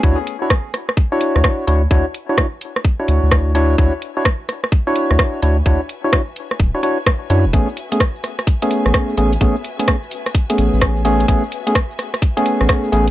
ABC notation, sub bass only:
X:1
M:4/4
L:1/16
Q:"Swing 16ths" 1/4=128
K:Dlyd
V:1 name="Sub bass" clef=bass
D,, z8 z2 D,, z2 D,,2 | D,, z8 z D,, D,,4- D,, | D,, z8 z2 D,, z2 D,,2 | D,, z6 z D,,, z4 z F,, D,,, |
A,,, z8 z2 A,,, z2 A,,,2 | A,,, z8 z A,,, A,,,4- A,,, | A,,, z8 z2 A,,, z2 A,,,2 |]